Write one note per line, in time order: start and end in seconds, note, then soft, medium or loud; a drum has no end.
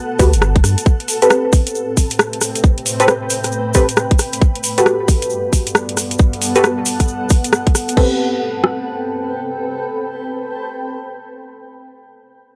0.00 0.86 B3 medium
0.00 1.91 A4 medium
0.00 0.86 F#5 medium
0.19 0.35 D2 medium
0.19 0.31 F#4 medium
0.19 0.31 G4 medium
0.19 0.31 A4 medium
0.19 0.31 B4 medium
0.19 kick loud
0.19 open hi-hat loud
0.19 shaker medium
0.33 0.62 G1 loud
0.33 closed hi-hat medium
0.33 shaker medium
0.42 cross-stick loud
0.42 shaker soft
0.56 kick loud
0.56 closed hi-hat soft
0.64 0.76 G2 loud
0.64 cross-stick soft
0.64 open hi-hat medium
0.64 shaker loud
0.78 closed hi-hat medium
0.78 shaker medium
0.86 4.19 A2 medium
0.86 kick loud
0.86 shaker soft
1.00 closed hi-hat soft
1.08 open hi-hat loud
1.08 shaker medium
1.22 2.97 C4 medium
1.22 4.19 C4 medium
1.22 2.97 G4 medium
1.22 2.97 A4 medium
1.22 2.97 B4 medium
1.22 closed hi-hat medium
1.22 shaker soft
1.30 cross-stick loud
1.30 shaker soft
1.53 kick loud
1.53 open hi-hat loud
1.53 shaker medium
1.67 closed hi-hat medium
1.67 shaker soft
1.75 5.72 B4 medium
1.75 shaker soft
1.90 4.19 G5 medium
1.97 kick medium
1.97 open hi-hat medium
1.97 shaker loud
2.10 closed hi-hat medium
2.10 shaker medium
2.19 cross-stick loud
2.19 shaker soft
2.33 closed hi-hat medium
2.41 cross-stick soft
2.41 open hi-hat loud
2.41 shaker medium
2.56 closed hi-hat medium
2.56 shaker medium
2.64 kick loud
2.64 shaker soft
2.78 closed hi-hat soft
2.86 open hi-hat loud
2.86 shaker medium
3.00 3.12 C4 medium
3.00 3.12 G4 medium
3.00 3.12 A4 medium
3.00 3.12 B4 loud
3.00 closed hi-hat medium
3.00 shaker medium
3.08 cross-stick loud
3.08 shaker soft
3.30 open hi-hat loud
3.30 shaker medium
3.44 cross-stick soft
3.44 closed hi-hat medium
3.44 shaker medium
3.52 shaker soft
3.74 3.86 C4 medium
3.74 3.86 G4 medium
3.74 3.86 A4 medium
3.74 3.86 B4 medium
3.74 kick medium
3.74 open hi-hat loud
3.74 shaker medium
3.89 closed hi-hat medium
3.89 shaker soft
3.97 cross-stick loud
3.97 shaker soft
4.11 kick medium
4.11 closed hi-hat medium
4.19 7.97 G2 loud
4.19 cross-stick soft
4.19 open hi-hat medium
4.19 shaker medium
4.33 closed hi-hat medium
4.33 shaker soft
4.42 kick loud
4.42 shaker soft
4.48 7.97 B3 medium
4.55 closed hi-hat soft
4.64 open hi-hat loud
4.64 shaker medium
4.78 6.52 F#4 medium
4.78 6.52 G4 medium
4.78 6.52 A4 medium
4.78 6.52 B4 medium
4.78 closed hi-hat medium
4.78 shaker soft
4.86 cross-stick loud
4.86 shaker soft
4.96 7.97 A4 medium
5.08 kick loud
5.08 open hi-hat loud
5.08 shaker medium
5.20 7.97 F#5 medium
5.20 closed hi-hat medium
5.20 shaker soft
5.30 shaker soft
5.53 kick medium
5.53 open hi-hat loud
5.53 shaker medium
5.67 closed hi-hat medium
5.67 shaker soft
5.75 cross-stick loud
5.75 shaker soft
5.89 closed hi-hat medium
5.97 cross-stick soft
5.97 open hi-hat loud
5.97 shaker medium
6.11 closed hi-hat medium
6.11 shaker soft
6.18 kick loud
6.18 shaker soft
6.33 closed hi-hat soft
6.42 open hi-hat loud
6.42 shaker medium
6.55 6.68 F#4 medium
6.55 6.68 G4 medium
6.55 6.68 A4 medium
6.55 6.68 B4 loud
6.55 closed hi-hat medium
6.55 shaker soft
6.63 cross-stick loud
6.63 shaker soft
6.86 open hi-hat loud
6.86 shaker medium
7.00 kick medium
7.00 cross-stick soft
7.00 closed hi-hat medium
7.00 shaker soft
7.08 shaker soft
7.30 kick loud
7.30 open hi-hat loud
7.30 shaker medium
7.44 closed hi-hat medium
7.44 shaker soft
7.53 cross-stick loud
7.53 shaker soft
7.67 kick medium
7.67 closed hi-hat medium
7.75 cross-stick soft
7.75 open hi-hat loud
7.75 shaker loud
7.89 closed hi-hat medium
7.89 shaker soft
7.97 10.99 C4 medium
7.97 10.99 G4 medium
7.97 10.99 A4 medium
7.97 10.99 B4 medium
7.97 kick loud
7.97 crash medium
8.05 11.08 A4 medium
8.12 11.15 B4 medium
8.17 11.19 G5 medium
8.64 cross-stick medium